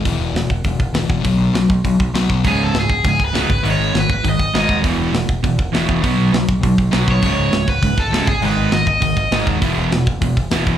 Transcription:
<<
  \new Staff \with { instrumentName = "Overdriven electric guitar" } { \time 4/4 \key e \major \tempo 4 = 201 r1 | r1 | gis'8 a'8 gis'4 gis'8 b'4. | cis''4 b'8 b'8 dis''4 dis''8. r16 |
r1 | r2. r8 cis''8~ | cis''4. b'4 a'4 gis'8 | b'4 dis''8 dis''2 r8 |
r1 | }
  \new Staff \with { instrumentName = "Distorted electric guitar" } { \clef bass \time 4/4 \key e \major <e, b, e>4 <e, b,>8 r8 <e, b,>8 r8 <e, b, e>4 | <b, fis b>4 <b, fis>8 r8 <b, fis>8 r8 <b, fis b>4 | <cis, gis, cis>4 <cis, gis,>8 r8 <cis, gis,>8 r8 <cis, gis, cis>8 r8 | <gis, dis gis>4 <gis, dis>8 r8 <gis, dis>8 r8 <gis, dis gis>4 |
<e, b, e>4 <e, b,>8 r8 <e, b,>8 r8 <e, b, e>4 | <b, fis b>4 <b, fis>8 r8 <b, fis>8 r8 <b, fis b>4 | <cis, gis, cis>4 <cis, gis,>8 r8 <cis, gis,>8 r8 <cis, gis, cis>8 r8 | <gis, dis gis>4 <gis, dis>8 r8 <gis, dis>8 r8 <gis, dis gis>4 |
<e, b, e>4 <e, b,>8 r8 <e, b,>8 r8 <e, b, e>4 | }
  \new Staff \with { instrumentName = "Distorted electric guitar" } { \clef bass \time 4/4 \key e \major r1 | r1 | <cis, gis, cis>4 <cis, gis,>8 r8 <cis, gis,>8 r8 <cis, gis, cis>8 r8 | <gis, dis gis>4 <gis, dis>8 r8 <gis, dis>8 r8 <gis, dis gis>4 |
<e, b, e>4 <e, b,>8 r8 <e, b,>8 r8 <e, b, e>4 | <b, fis b>4 <b, fis>8 r8 <b, fis>8 r8 <b, fis b>4 | <cis, gis, cis>4 <cis, gis,>8 r8 <cis, gis,>8 r8 <cis, gis, cis>8 r8 | <gis, dis gis>4 <gis, dis>8 r8 <gis, dis>8 r8 <gis, dis gis>4 |
<e, b, e>4 <e, b,>8 r8 <e, b,>8 r8 <e, b, e>4 | }
  \new Staff \with { instrumentName = "Picked electric bass" } { \clef bass \time 4/4 \key e \major e,,8 e,,8 e,,8 e,,8 e,,8 e,,8 e,,8 e,,8 | b,,8 b,,8 b,,8 b,,8 b,,8 b,,8 b,,8 b,,8 | cis,,8 cis,,8 cis,,8 cis,,8 cis,,8 cis,,8 cis,,8 gis,,8 | gis,,8 gis,,8 gis,,8 gis,,8 gis,,8 gis,,8 gis,,8 dis,,8 |
e,,8 e,,8 e,,8 e,,8 e,,8 e,,8 e,,8 e,,8 | b,,8 b,,8 b,,8 b,,8 b,,8 b,,8 b,,8 b,,8 | cis,,8 cis,,8 cis,,8 cis,,8 cis,,8 cis,,8 cis,,8 gis,,8 | gis,,8 gis,,8 gis,,8 gis,,8 gis,,8 gis,,8 gis,,8 dis,,8 |
e,,8 e,,8 e,,8 e,,8 e,,8 e,,8 e,,8 e,,8 | }
  \new DrumStaff \with { instrumentName = "Drums" } \drummode { \time 4/4 <hho bd>4 <hho sn>8 bd8 <hho bd>8 bd8 <hho sn>8 bd8 | <hho bd>4 <hho sn>8 bd8 <hho bd>8 bd8 <hho sn>8 bd8 | <hho bd>4 <hho sn>8 bd8 <hho bd>8 bd8 <hho sn>8 bd8 | hho4 <hho sn>8 bd8 <hho bd>8 bd8 <hho sn>8 bd8 |
<hho bd>4 <hho sn>8 bd8 <hho bd>8 bd8 <hho sn>8 bd8 | <hho bd>4 <hho sn>8 bd8 <hho bd>8 bd8 <hho sn>8 bd8 | <hho bd>4 <hho sn>8 bd8 <hho bd>8 bd8 <hho sn>8 bd8 | hho4 <hho sn>8 bd8 <hho bd>8 bd8 <hho sn>8 bd8 |
<hho bd>4 <hho sn>8 bd8 <hho bd>8 bd8 <hho sn>8 bd8 | }
>>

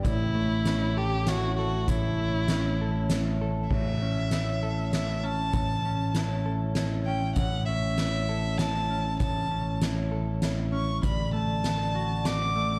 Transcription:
<<
  \new Staff \with { instrumentName = "Violin" } { \time 3/4 \key a \mixolydian \tempo 4 = 98 e'4. g'8 fis'8 fis'8 | e'2 r4 | e''2 e''8 a''8~ | a''4. r4 g''8 |
fis''8 e''4. a''4 | a''4 r4. cis'''8 | b''8 a''4. d'''4 | }
  \new Staff \with { instrumentName = "Vibraphone" } { \time 3/4 \key a \mixolydian cis''4 cis''4 cis''4 | cis''4 cis''4 cis''4 | cis''4 cis''4 cis''4 | cis''4 cis''4 cis''4 |
cis''4 cis''4 cis''4 | cis''4 cis''4 cis''4 | d''4 d''4 d''4 | }
  \new Staff \with { instrumentName = "Clean electric guitar" } { \time 3/4 \key a \mixolydian a,8 a8 cis'8 a'8 e'8 a'8 | a,8 a8 cis'8 a'8 e'8 a'8 | a,8 cis'8 e'8 a'8 e'8 cis'8 | a,8 cis'8 e'8 a'8 e'8 cis'8 |
a,8 cis'8 e'8 a'8 e'8 cis'8 | a,8 cis'8 e'8 a'8 e'8 cis'8 | d,8 a4 fis'4 a8 | }
  \new Staff \with { instrumentName = "Picked electric bass" } { \clef bass \time 3/4 \key a \mixolydian a,,2. | a,,2. | a,,2. | a,,2. |
a,,2. | a,,2. | a,,2. | }
  \new DrumStaff \with { instrumentName = "Drums" } \drummode { \time 3/4 <hh bd>4 <hh sn>4 <hh sn>4 | <hh bd>4 <hh sn>4 <hh sn>4 | <cymc bd>4 <hh sn>4 <hh sn>4 | <hh bd>4 <hh sn>4 <hh sn>4 |
<hh bd>4 <hh sn>4 <hh sn>4 | <hh bd>4 <hh sn>4 <hh sn>4 | <hh bd>4 <hh sn>4 <hh sn>4 | }
>>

